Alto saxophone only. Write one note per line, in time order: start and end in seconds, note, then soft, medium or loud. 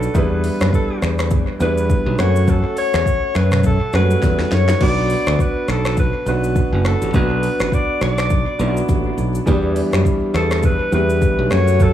0.00 0.18 A4 medium
0.16 0.74 B4 loud
0.75 1.01 A4 medium
1.62 2.21 B4 loud
2.20 2.51 C#5 loud
2.49 2.78 A4 medium
2.78 3.38 C#5 loud
3.37 3.65 B4 loud
3.66 3.92 A4 loud
3.95 4.55 B4 loud
4.54 4.82 C#5 loud
4.83 5.43 D5 loud
5.41 5.72 B4 loud
5.70 5.98 A4 medium
5.99 6.25 B4 loud
6.28 6.88 B4 loud
6.86 7.15 A4 medium
7.15 7.75 B4 loud
7.74 8.02 D5 loud
8.03 8.85 D5 loud
10.36 10.66 A4 loud
10.65 10.93 B4 loud
10.94 11.54 B4 loud
11.53 11.83 C#5 loud
11.82 11.93 A4 loud